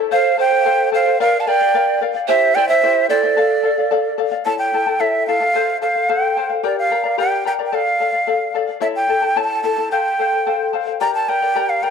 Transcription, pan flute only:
0.12 C5
0.38 C5
0.94 C5
1.20 A#4
1.40 F5
1.47 D5
2.28 C5
2.55 D5
2.69 C5
3.09 A4

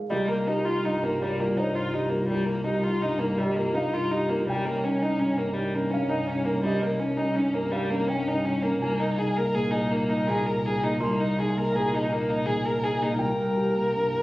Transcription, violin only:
0.11 G3
0.29 A#3
0.48 D#4
0.65 F4
0.85 D#4
1.04 A#3
1.23 G3
1.40 A#3
1.58 D#4
1.76 F4
1.94 D#4
2.10 A#3
2.28 G3
2.46 A#3
2.65 D#4
2.84 F4
3.02 D#4
3.19 A#3
3.38 G3
3.57 A#3
3.75 D#4
3.94 F4
4.11 D#4
4.30 A#3
4.48 G3
4.66 A#3
4.84 C#4
5.03 D#4
5.20 C#4
5.38 A#3
5.54 G3
5.75 A#3
5.91 C#4
6.10 D#4
6.27 C#4
6.45 A#3
6.65 G3
6.82 A#3
7.00 C#4
7.17 D#4
7.36 C#4
7.54 A#3
7.72 G3
7.91 A#3
8.08 C#4
8.28 D#4
8.45 C#4
8.63 A#3
8.81 A#3
9.00 D#4
9.19 G#4
9.37 A#4
9.55 G#4
9.71 D#4
9.91 A#3
10.09 D#4
10.29 G#4
10.46 A#4
10.66 G#4
10.84 D#4
11.01 A#3
11.20 D#4
11.40 G#4
11.58 A#4
11.76 G#4
11.94 D#4
12.12 A#3
12.30 D#4
12.47 G#4
12.65 A#4
12.84 G#4
13.03 D#4
13.22 A#4

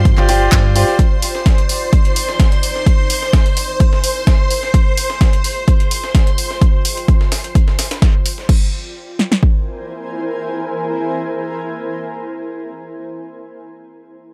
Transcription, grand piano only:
0.18 F4 G4 C5 D5 G5
0.29 F4 G4 C5 D5 G5
0.76 F4 G4 C5 D5 G5

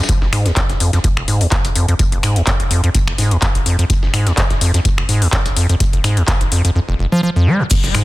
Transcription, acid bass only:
0.09 F2
0.22 F1
0.33 G#2
0.46 D#2
0.56 F2
0.69 F1
0.80 F2
0.93 F2
1.04 F2
1.17 F1
1.28 G#2
1.41 D#2
1.52 F2
1.65 F1
1.76 F2
1.88 F2
1.99 F2
2.12 F1
2.23 G#2
2.36 D#2
2.47 F2
2.60 F1
2.71 F2
2.84 F2
2.95 F2
3.08 F1
3.18 G#2
3.31 D#2
3.42 F2
3.55 F1
3.66 F2
3.79 F2
3.90 F2
4.03 F1
4.14 G#2
4.27 D#2
4.37 F2
4.50 F1
4.61 F2
4.74 F2
4.85 F2
4.98 F1
5.09 G#2
5.22 D#2
5.33 F2
5.46 F1
5.56 F2
5.69 F2
5.80 F2
5.93 F1
6.04 G#2
6.17 D#2
6.28 F2
6.41 F1
6.52 F2
6.65 F2
6.76 F2
6.89 F1
6.99 F1
7.12 F3
7.23 F3
7.36 F2
7.47 G#3
7.60 F2
7.71 F2
7.84 F1
7.95 G#2

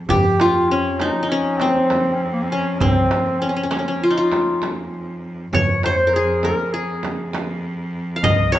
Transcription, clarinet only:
0.09 G4
0.40 F4
0.69 C#4
0.99 D#4
1.29 C#4
1.58 C4
2.13 C#4
2.23 C4
2.33 A#3
2.42 C4
2.50 C#4
2.80 C4
3.40 C#4
4.02 F4
4.15 F4
4.24 D#4
4.33 F4
5.53 C#5
5.84 C5
5.91 C#5
5.97 C5
6.13 G#4
6.44 A#4
6.73 G#4
8.23 D#5
8.53 C#5

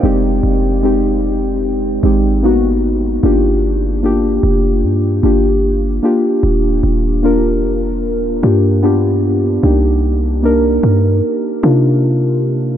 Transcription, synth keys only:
Already playing: D5 G5
0.03 G#3 C4 D#4 G4
0.83 G#3 C4 D#4 G4
2.03 G#3 C4 D#4 G4
2.43 A#3 B3 D#4 F#4
3.23 A#3 D4 F4 G4
4.03 A#3 D4 F4 G4
5.23 A#3 D4 F4 G4
6.03 A#3 D4 F4 G4
7.23 A#3 D4 F4 A#4
8.43 A#3 D4 F4 G4
8.83 B3 D4 F4 G4
9.63 A#3 D4 D#4 G4
10.43 A#3 D4 D#4 A#4
11.63 A#3 D4 D#4 F4

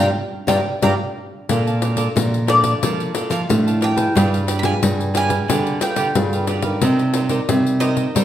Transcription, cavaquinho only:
0.48 D5 F5 G5
0.83 D5 F5 G5
1.49 A#4 D5 F5 A5
1.67 D5 F5 A5
1.81 A#4 D5 F5 A5
1.97 A#4 D5 F5 A5
2.47 A#4 D5 F5 A5
2.63 D5 F5 A5
2.83 A#4 D5 F5 A5
3.15 A#4 D5 F5 A5
3.30 A#4 D5 F5 A5
3.67 D5 F5 A5
3.81 A#4 D5 F5 A5
3.96 D5 F5 A5
4.15 D4 G4 B4 F5
4.33 G4 B4 F5
4.47 D4 G4 B4 F5
4.62 D4 G4 B4 F5
5.14 D4 G4 B4 F5
5.28 G4 B4 F5
5.48 D4 G4 B4 F5
5.80 D4 G4 B4 F5
5.96 D4 G4 B4 F5
6.33 G4 B4 F5
6.47 D4 G4 B4 F5
6.63 G4 B4 F5
6.82 D#4 A#4 C5 D#5
6.99 A#4 C5 D#5
7.14 D#4 A#4 C5 D#5
7.30 D#4 A#4 C5 D#5
7.80 D#4 A#4 C5 D#5
7.95 A#4 C5 D#5
8.15 D#4 A#4 C5 D#5

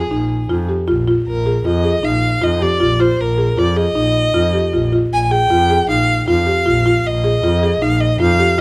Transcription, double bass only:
0.12 A#1
0.50 F2
0.88 A#1
1.27 A#1
1.65 F2
2.04 A#1
2.42 F2
2.81 A#1
3.20 A#1
3.58 F2
3.96 A#1
4.35 F2
4.73 A#1
5.12 A#1
5.50 F2
5.89 A#1
6.28 F2
6.66 A#1
7.05 A#1
7.43 F2
7.82 A#1
8.20 F2
8.57 A#1

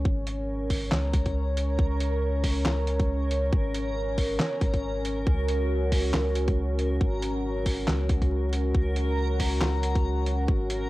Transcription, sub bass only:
0.05 G#1
0.92 C#2
1.79 C#2
2.66 C#2
3.53 G#1
4.61 G#1
5.27 C#2
6.14 C#2
7.01 G#1
7.88 C#2
8.75 C#2
9.61 C#2
10.48 G#1

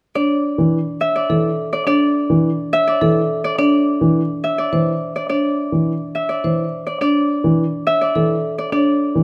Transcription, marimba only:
0.16 D4
1.30 A4
1.87 D4
3.01 A4
3.59 D4
4.73 C5
5.30 D4
6.44 C5
7.01 D4
8.15 A4
8.72 D4

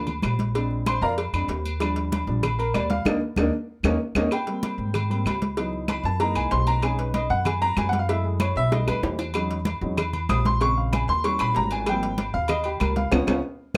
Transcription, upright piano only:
0.55 G#3 C4 D4
0.87 C5 C6
1.02 A#4 D5 F5 A#5
1.34 G#3 C4 D4
1.80 F3 G3 D4
2.27 F3 G3 D4
2.59 A#4
2.74 D5
2.90 F5
3.06 A#3 D4 D#4
3.38 A#3 D4 D#4
3.85 A#3 C#4 D#4
4.16 A#3 C#4 D#4
4.33 G5
4.47 G3 A#3 C4
5.10 G3 A#3 C4
5.57 E3 F#3 B3 D#4
5.90 B5
6.05 A5
6.20 E3 G#3 A#3 D#4 A#5
6.36 G#5
6.51 C6
6.67 A#5
6.82 G#3 C#4 D#4 G#5
6.99 B4
7.15 D#5
7.30 F#5
7.46 G#5
7.62 A#5
7.78 G#5
7.89 F#5
7.99 F5
8.08 G#3 A3 E4 E5
8.25 G#4
8.41 C#5
8.57 E5
8.72 G3 A3 D#4 D#5
8.88 B4
9.34 F#3 G#3 C#4 D#4
9.82 F#3 G#3 C#4 D#4
10.30 D#6
10.46 C6
10.60 C#3 G#3 C4 C#6
10.78 F5
10.94 G#5
11.09 C6
11.24 E3 G3 C#4 C#6
11.41 B5
11.56 A#5
11.72 G#5
11.88 F3 G3 A#3 C4 G5
12.34 F5
12.49 D#5
12.65 G4
12.80 A#4
12.97 F5
13.11 B3 C#4 F4
13.27 B3 C#4 F4

